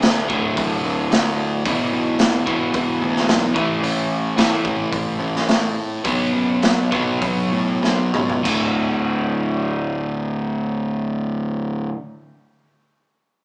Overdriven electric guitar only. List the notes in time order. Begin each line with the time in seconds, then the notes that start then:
Already playing: D2 A2 D3
0.29 D2 A2 D3
1.65 E2 B2 E3
2.47 E2 B2 E3
3.54 A2 E3 A3
4.37 A2 E3 A3
6.05 B2 F#3 B3
6.91 B2 F#3 B3
8.43 D2 A2
8.48 D3